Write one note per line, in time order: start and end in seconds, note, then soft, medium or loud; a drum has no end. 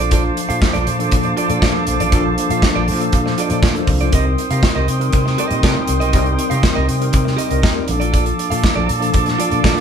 0.00 0.27 A#1 medium
0.00 0.76 F3 medium
0.00 0.76 A#3 medium
0.00 0.76 D4 medium
0.00 0.11 F4 medium
0.00 0.76 A4 medium
0.00 0.11 A4 medium
0.00 7.60 C5 medium
0.00 0.12 D5 medium
0.00 3.83 F5 medium
0.00 0.10 A5 medium
0.00 3.85 A5 medium
0.00 3.88 D6 medium
0.11 0.31 F4 medium
0.11 0.24 A4 medium
0.11 0.23 D5 medium
0.11 kick loud
0.11 closed hi-hat medium
0.24 muted clean electric guitar stroke medium
0.37 muted clean electric guitar stroke soft
0.37 closed hi-hat medium
0.49 0.60 A#2 loud
0.49 0.60 F4 soft
0.49 0.61 A4 medium
0.49 0.62 F5 medium
0.49 closed hi-hat soft
0.61 muted clean electric guitar stroke soft
0.61 kick loud
0.61 snare loud
0.73 0.85 A#1 medium
0.73 0.86 F4 medium
0.73 0.87 A4 medium
0.73 0.87 D5 medium
0.73 closed hi-hat soft
0.87 1.08 A#2 medium
0.87 muted clean electric guitar stroke soft
0.87 closed hi-hat medium
0.99 1.44 F3 loud
0.99 1.44 A#3 medium
0.99 1.44 D4 medium
0.99 1.45 A4 loud
0.99 muted clean electric guitar stroke soft
0.99 closed hi-hat soft
1.11 1.32 A#2 medium
1.11 muted clean electric guitar stroke soft
1.11 kick loud
1.11 closed hi-hat medium
1.23 muted clean electric guitar stroke soft
1.23 closed hi-hat soft
1.37 1.50 F4 medium
1.37 1.49 A4 medium
1.37 1.48 D5 medium
1.37 closed hi-hat medium
1.49 1.60 A#2 medium
1.49 1.72 F3 medium
1.49 1.72 A#3 medium
1.49 1.72 D4 medium
1.49 1.61 F4 soft
1.49 1.72 A4 medium
1.49 1.62 A4 medium
1.49 1.63 D5 medium
1.49 closed hi-hat soft
1.62 1.72 A#2 medium
1.62 1.81 F4 medium
1.62 1.75 A4 medium
1.62 1.74 D5 loud
1.62 kick loud
1.62 snare loud
1.73 2.08 F3 medium
1.73 2.08 A#3 medium
1.73 2.08 D4 medium
1.73 2.08 A4 loud
1.73 muted clean electric guitar stroke soft
1.87 1.98 A#1 medium
1.87 muted clean electric guitar stroke soft
1.87 closed hi-hat medium
2.00 2.10 A1 medium
2.00 2.11 F4 medium
2.00 2.12 A4 medium
2.00 2.13 D5 medium
2.00 closed hi-hat medium
2.11 2.33 A#1 medium
2.11 2.90 F3 loud
2.11 2.90 A#3 medium
2.11 2.90 D4 medium
2.11 2.32 F4 medium
2.11 2.91 A4 loud
2.11 2.25 A4 medium
2.11 2.24 D5 medium
2.11 kick loud
2.11 closed hi-hat medium
2.25 muted clean electric guitar stroke medium
2.38 muted clean electric guitar stroke soft
2.38 closed hi-hat medium
2.50 2.60 A#2 medium
2.50 2.62 F4 soft
2.50 2.63 A4 soft
2.50 2.64 F5 medium
2.50 closed hi-hat soft
2.62 muted clean electric guitar stroke soft
2.62 kick loud
2.62 snare loud
2.75 2.90 A#1 medium
2.75 2.86 F4 medium
2.75 2.87 A4 medium
2.75 2.87 D5 medium
2.87 3.08 A#2 medium
2.87 3.11 A5 medium
2.87 muted clean electric guitar stroke soft
2.87 open hi-hat medium
2.99 3.44 F3 medium
2.99 3.45 A#3 medium
2.99 3.45 D4 medium
2.99 3.45 A4 loud
2.99 muted clean electric guitar stroke soft
2.99 closed hi-hat soft
3.12 3.33 A#2 medium
3.12 3.36 F5 medium
3.12 muted clean electric guitar stroke soft
3.12 kick loud
3.12 closed hi-hat medium
3.26 muted clean electric guitar stroke soft
3.26 snare soft
3.38 3.51 F4 medium
3.38 3.51 A4 medium
3.38 3.49 D5 medium
3.38 3.61 D#5 medium
3.38 closed hi-hat medium
3.49 3.71 A#2 medium
3.49 3.72 F3 medium
3.49 3.72 A#3 medium
3.49 3.72 D4 medium
3.49 3.62 F4 soft
3.49 3.72 A4 medium
3.49 3.63 A4 medium
3.49 3.64 D5 medium
3.49 closed hi-hat soft
3.62 3.82 F4 medium
3.62 3.76 A4 medium
3.62 3.74 D5 medium
3.62 3.75 D5 medium
3.62 kick loud
3.62 snare loud
3.73 4.08 F3 medium
3.73 4.08 A#3 medium
3.73 4.08 D4 medium
3.73 4.08 A4 medium
3.73 4.09 C5 medium
3.73 muted clean electric guitar stroke soft
3.73 closed hi-hat soft
3.87 4.08 C2 medium
3.87 muted clean electric guitar stroke soft
3.87 kick loud
3.87 open hi-hat medium
4.01 4.12 F4 soft
4.01 4.13 A4 medium
4.01 4.14 D5 medium
4.01 closed hi-hat soft
4.11 4.33 C2 medium
4.11 4.90 G3 medium
4.11 4.90 C4 medium
4.11 4.91 D#4 medium
4.11 4.32 G4 medium
4.11 4.91 A#4 loud
4.11 4.26 A#4 medium
4.11 4.25 D#5 medium
4.11 7.85 G5 medium
4.11 7.85 C6 medium
4.11 7.85 D#6 medium
4.11 kick loud
4.11 closed hi-hat medium
4.26 muted clean electric guitar stroke soft
4.38 muted clean electric guitar stroke soft
4.38 closed hi-hat medium
4.51 4.61 C3 loud
4.51 4.62 G4 soft
4.51 4.63 A#4 soft
4.51 4.64 F5 medium
4.51 closed hi-hat medium
4.63 kick loud
4.63 snare loud
4.75 4.86 C2 medium
4.75 4.86 G4 medium
4.75 4.87 A#4 medium
4.75 4.88 D#5 medium
4.88 5.08 C3 loud
4.88 muted clean electric guitar stroke soft
4.88 closed hi-hat medium
4.99 5.44 G3 medium
4.99 5.45 C4 medium
4.99 5.45 D#4 medium
4.99 5.45 A#4 loud
4.99 muted clean electric guitar stroke soft
4.99 closed hi-hat soft
5.12 5.34 C3 medium
5.12 muted clean electric guitar stroke soft
5.12 kick loud
5.12 closed hi-hat medium
5.26 muted clean electric guitar stroke soft
5.26 snare soft
5.38 5.51 G4 medium
5.38 5.50 A#4 medium
5.38 5.49 D#5 medium
5.38 closed hi-hat medium
5.50 5.61 A#2 medium
5.50 5.73 G3 medium
5.50 5.73 C4 medium
5.50 5.73 D#4 medium
5.50 5.62 G4 soft
5.50 5.73 A#4 medium
5.50 5.63 A#4 medium
5.50 5.64 D#5 medium
5.50 closed hi-hat soft
5.63 5.74 C3 loud
5.63 5.83 G4 medium
5.63 5.76 A#4 loud
5.63 5.74 D#5 loud
5.63 kick loud
5.63 snare loud
5.75 6.09 G3 medium
5.75 6.09 C4 medium
5.75 6.10 D#4 medium
5.75 6.10 A#4 medium
5.75 muted clean electric guitar stroke soft
5.88 6.01 C2 medium
5.88 muted clean electric guitar stroke soft
5.88 closed hi-hat medium
6.00 6.11 B1 medium
6.00 6.12 G4 medium
6.00 6.12 A#4 medium
6.00 6.14 D#5 medium
6.00 closed hi-hat soft
6.13 6.34 C2 loud
6.13 6.92 G3 loud
6.13 6.92 C4 medium
6.13 6.92 D#4 medium
6.13 6.32 G4 medium
6.13 6.26 A#4 medium
6.13 6.92 A#4 loud
6.13 6.25 D#5 medium
6.13 kick medium
6.13 closed hi-hat medium
6.26 muted clean electric guitar stroke soft
6.26 closed hi-hat soft
6.38 muted clean electric guitar stroke soft
6.38 closed hi-hat medium
6.50 6.61 C3 loud
6.50 6.62 G4 medium
6.50 6.62 A#4 medium
6.50 6.64 F5 medium
6.50 closed hi-hat medium
6.63 muted clean electric guitar stroke soft
6.63 kick loud
6.63 snare loud
6.75 6.87 C2 loud
6.75 6.86 G4 medium
6.75 6.87 A#4 medium
6.75 6.88 D#5 medium
6.88 7.09 C3 medium
6.88 muted clean electric guitar stroke soft
6.88 closed hi-hat medium
7.00 7.45 G3 medium
7.00 7.46 C4 medium
7.00 7.46 D#4 medium
7.00 7.46 A#4 loud
7.00 muted clean electric guitar stroke soft
7.00 closed hi-hat soft
7.13 7.34 C3 loud
7.13 muted clean electric guitar stroke soft
7.13 kick loud
7.13 closed hi-hat medium
7.25 muted clean electric guitar stroke soft
7.25 snare soft
7.37 7.50 G4 medium
7.37 7.50 A#4 medium
7.37 7.48 D#5 medium
7.37 closed hi-hat medium
7.50 7.61 C2 medium
7.50 7.73 G3 medium
7.50 7.74 C4 medium
7.50 7.74 D#4 medium
7.50 7.61 G4 soft
7.50 7.62 A#4 medium
7.50 7.74 A#4 loud
7.50 7.63 D#5 medium
7.50 closed hi-hat soft
7.62 7.82 G4 medium
7.62 7.75 A#4 loud
7.62 7.74 D#5 loud
7.62 kick loud
7.62 snare loud
7.75 7.88 G3 medium
7.75 7.88 C4 medium
7.75 7.89 D#4 medium
7.75 7.89 A#4 medium
7.75 muted clean electric guitar stroke soft
7.87 8.29 A#1 loud
7.87 8.78 F3 medium
7.87 8.78 A#3 medium
7.87 8.78 D4 medium
7.87 9.80 A4 medium
7.87 8.78 A4 medium
7.87 9.80 F5 medium
7.87 9.80 A5 medium
7.87 9.80 D6 medium
7.87 muted clean electric guitar stroke soft
7.87 closed hi-hat medium
8.00 8.11 F4 medium
8.00 8.12 A4 medium
8.00 8.13 D5 medium
8.00 closed hi-hat soft
8.12 8.32 F4 medium
8.12 8.26 A4 loud
8.12 8.25 D5 medium
8.12 kick medium
8.12 closed hi-hat medium
8.26 muted clean electric guitar stroke soft
8.26 closed hi-hat soft
8.39 muted clean electric guitar stroke soft
8.39 closed hi-hat medium
8.50 8.62 A#2 loud
8.50 8.62 F4 soft
8.50 8.63 A4 medium
8.50 8.64 F5 medium
8.50 closed hi-hat medium
8.63 muted clean electric guitar stroke soft
8.63 kick loud
8.63 snare loud
8.75 8.87 A#1 medium
8.75 8.87 F4 medium
8.75 8.88 A4 medium
8.75 8.88 D5 medium
8.88 9.10 A#2 medium
8.88 muted clean electric guitar stroke soft
8.88 closed hi-hat medium
9.00 9.45 F3 medium
9.00 9.46 A#3 medium
9.00 9.46 D4 medium
9.00 9.46 A4 medium
9.00 muted clean electric guitar stroke soft
9.00 closed hi-hat soft
9.13 9.35 A#2 medium
9.13 muted clean electric guitar stroke soft
9.13 kick loud
9.13 closed hi-hat medium
9.26 muted clean electric guitar stroke soft
9.26 snare soft
9.26 closed hi-hat soft
9.38 9.52 F4 medium
9.38 9.51 A4 medium
9.38 9.50 D5 medium
9.38 closed hi-hat medium
9.51 9.62 A#2 medium
9.51 9.74 F3 medium
9.51 9.74 A#3 medium
9.51 9.74 D4 medium
9.51 9.63 F4 medium
9.51 9.63 A4 medium
9.51 9.74 A4 medium
9.51 9.64 D5 medium
9.51 closed hi-hat soft
9.64 9.74 A#2 medium
9.64 9.80 F4 medium
9.64 9.76 A4 medium
9.64 9.75 D5 medium
9.64 kick loud
9.64 snare loud
9.76 9.80 F3 medium
9.76 9.80 A#3 medium
9.76 9.80 D4 medium
9.76 9.80 A4 loud
9.76 muted clean electric guitar stroke soft